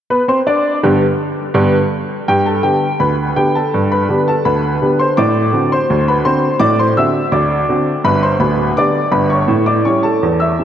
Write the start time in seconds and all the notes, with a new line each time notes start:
0.10 B3 B4 B5
0.28 C4 C5 C6
0.47 D4 D5 D6
0.83 G2 D3 B3 G4
1.54 G2 D3 B3 G4
2.28 G2 G4 G5
2.46 A4 A5
2.63 D3 B3 G4 G5
3.00 D2 B4 B5
3.36 D3 B3 G4 G5
3.55 A4 A5
3.74 G2
3.92 B4 B5
4.09 D3 B3 G4
4.28 A4 A5
4.45 D2 B4 B5
4.82 D3 B3 G4
4.99 C5 C6
5.17 A2 D5 D6
5.53 D3 C4 F#4
5.72 C5 C6
5.90 D2
6.08 B4 B5
6.25 D3 C4 F#4 C5 C6
6.60 A2 D5 D6
6.79 C5 C6
6.97 D3 C4 F#4 E5 E6
7.32 D2 D5 D6
7.69 D3 C4 F#4
8.04 G1 G2 B4 B5
8.23 C5 C6
8.39 D1 D2 B4 B5
8.77 D3 B3 G4 D5 D6
9.12 G1 G2 B4 B5
9.30 C#5 C#6
9.48 A2
9.66 D5 D6
9.85 G3 C#4 E4 C#5 C#6
10.03 A4 A5
10.23 E2
10.40 E5 E6
10.59 G3 C#4 E4